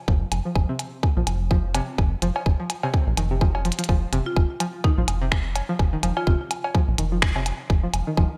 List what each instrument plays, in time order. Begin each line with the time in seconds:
0.08 analog synth bass F1, synth pluck F3, kick, low woodblock
0.32 analog synth bass F1, closed hi-hat, low woodblock
0.45 synth pluck F3
0.56 analog synth bass F1, kick, low woodblock
0.69 synth pluck C3
0.79 closed hi-hat, low woodblock
1.03 kick, low woodblock
1.17 analog synth bass A#1, synth pluck F3
1.27 analog synth bass F1, closed hi-hat, low woodblock
1.51 synth pluck F3, kick, low woodblock
1.75 synth pluck C3, closed hi-hat, cowbell, low woodblock
1.98 analog synth bass F1, kick, low woodblock
2.22 analog synth bass F1, synth pluck F3, closed hi-hat, low woodblock
2.36 cowbell
2.46 analog synth bass F1, kick, low woodblock
2.60 synth pluck F3
2.70 closed hi-hat, low woodblock
2.83 synth pluck C3, cowbell
2.94 kick, low woodblock
3.07 analog synth bass A#1
3.17 analog synth bass F1, synth pluck D#3, closed hi-hat, low woodblock
3.31 synth pluck C3
3.41 synth pluck F3, kick, low woodblock
3.55 cowbell
3.65 synth pluck F3, closed hi-hat, low woodblock
3.72 closed hi-hat
3.79 synth pluck F3, closed hi-hat
3.84 closed hi-hat
3.89 analog synth bass F1, synth pluck F3, kick, low woodblock
4.13 analog synth bass F1, synth pluck C3, closed hi-hat, low woodblock
4.26 marimba F4
4.36 analog synth bass F1, kick, low woodblock
4.60 synth pluck F3, closed hi-hat, low woodblock
4.84 synth pluck D#3, marimba D#4, kick, low woodblock
4.98 analog synth bass A#1, synth pluck F3
5.08 analog synth bass F1, closed hi-hat, low woodblock
5.22 synth pluck C3
5.32 finger snap, kick, low woodblock
5.56 closed hi-hat, cowbell, low woodblock
5.69 synth pluck F3
5.79 analog synth bass F1, kick, low woodblock
5.93 synth pluck D#3
6.03 analog synth bass F1, synth pluck F3, closed hi-hat, low woodblock
6.17 marimba F4, cowbell
6.27 analog synth bass F1, synth pluck C3, marimba F4, kick, low woodblock
6.51 closed hi-hat, low woodblock
6.64 cowbell
6.75 synth pluck F3, kick, low woodblock
6.88 analog synth bass A#1
6.98 analog synth bass F1, synth pluck D#3, closed hi-hat, low woodblock
7.12 synth pluck F3
7.22 finger snap, kick, low woodblock
7.36 synth pluck C3, cowbell
7.46 closed hi-hat, low woodblock
7.70 analog synth bass F1, kick, low woodblock
7.83 synth pluck F3
7.94 analog synth bass F1, closed hi-hat, low woodblock
8.07 synth pluck D#3
8.17 analog synth bass F1, synth pluck F3, kick, low woodblock